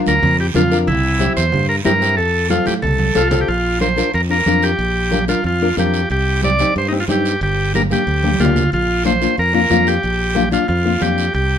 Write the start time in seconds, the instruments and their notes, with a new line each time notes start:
Already playing: nylon-string guitar D4 F4 A#4
0.06 fingered electric bass D2, transistor combo organ A#4, high conga, short guiro
0.22 fingered electric bass F2, low conga, long guiro
0.40 transistor combo organ G4
0.54 fingered electric bass F2, nylon-string guitar D4 F4 A#4, transistor combo organ F4, high conga, low conga, short guiro
0.70 nylon-string guitar D4 F4 A#4, short guiro
0.87 fingered electric bass C2, transistor combo organ E4, low conga, long guiro
1.19 nylon-string guitar C4 E4 G4, high conga, short guiro
1.37 fingered electric bass E2, transistor combo organ C5, short guiro
1.52 fingered electric bass G2, low conga, long guiro
1.69 transistor combo organ A#4
1.84 fingered electric bass G2, nylon-string guitar C4 E4 G4, transistor combo organ A#4, high conga, short guiro
2.00 nylon-string guitar C4 E4 G4, short guiro
2.17 fingered electric bass F2, transistor combo organ A4, long guiro
2.50 nylon-string guitar C4 F4 A4, transistor combo organ F4, high conga, short guiro
2.66 fingered electric bass A2, transistor combo organ G4, high conga, short guiro
2.82 fingered electric bass C2, transistor combo organ A4, low conga, long guiro
2.99 high conga
3.15 fingered electric bass C2, nylon-string guitar C4 F4 A4, transistor combo organ F4, high conga, short guiro
3.31 nylon-string guitar C4 F4 A4, low conga, short guiro
3.41 transistor combo organ G4
3.48 fingered electric bass A#1, transistor combo organ F4, long guiro
3.80 nylon-string guitar D4 F4 A#4, transistor combo organ C5, high conga, short guiro
3.96 nylon-string guitar D4 F4 A#4, short guiro
4.14 fingered electric bass F2, transistor combo organ A#4, long guiro
4.29 nylon-string guitar D4 F4 A#4, transistor combo organ A#4
4.46 fingered electric bass F2, nylon-string guitar D4 F4 A#4, high conga, short guiro
4.63 transistor combo organ G4, short guiro
4.79 fingered electric bass A#1, long guiro
5.11 nylon-string guitar D4 F4 A#4, high conga, short guiro
5.28 nylon-string guitar D4 F4 A#4, transistor combo organ F4, high conga, short guiro
5.44 fingered electric bass F2, transistor combo organ F4, long guiro
5.62 nylon-string guitar D4 F4 A#4
5.77 fingered electric bass F2, nylon-string guitar D4 F4 A#4, transistor combo organ G4, high conga, short guiro
5.94 short guiro
6.10 fingered electric bass C2, transistor combo organ G4, long guiro
6.43 nylon-string guitar C4 D#4 G4, transistor combo organ D5, high conga, short guiro
6.59 nylon-string guitar C4 D#4 G4, high conga, short guiro
6.76 fingered electric bass G2, transistor combo organ C5, long guiro
6.88 nylon-string guitar C4 D#4, transistor combo organ D#4
6.93 nylon-string guitar G4
7.00 transistor combo organ F4
7.08 fingered electric bass G2, nylon-string guitar C4 D#4 G4, transistor combo organ G4, high conga, short guiro
7.25 short guiro
7.41 fingered electric bass G1, transistor combo organ G4, long guiro
7.74 nylon-string guitar A#3 D4 G4, transistor combo organ A#4, high conga, short guiro
7.90 nylon-string guitar A#3 D4 G4, transistor combo organ G4, high conga, short guiro
8.07 fingered electric bass D2, long guiro
8.23 nylon-string guitar A#3 D4 G4, high conga
8.34 high conga
8.39 fingered electric bass D2, nylon-string guitar A#3 D4 G4, transistor combo organ F4, short guiro
8.45 low conga
8.56 low conga, short guiro
8.72 fingered electric bass A#1, transistor combo organ F4, long guiro
9.05 nylon-string guitar A#3 D4 F4, transistor combo organ C5, high conga, short guiro
9.21 nylon-string guitar A#3 D4 F4, short guiro
9.38 fingered electric bass F2, transistor combo organ A#4, long guiro
9.53 nylon-string guitar A#3 D4 F4, transistor combo organ A#4
9.69 fingered electric bass F2, nylon-string guitar A#3 D4 F4, high conga, short guiro
9.87 transistor combo organ G4, short guiro
10.03 fingered electric bass A#1, long guiro
10.35 nylon-string guitar A#3 D4 F4, high conga, short guiro
10.51 nylon-string guitar A#3 D4 F4, transistor combo organ F4, high conga, short guiro
10.68 fingered electric bass F2, transistor combo organ F4, long guiro
10.85 nylon-string guitar A#3 D4 F4
11.00 fingered electric bass F2, nylon-string guitar A#3 D4 F4, transistor combo organ G4, high conga, short guiro
11.18 short guiro
11.34 fingered electric bass C2, transistor combo organ G4, long guiro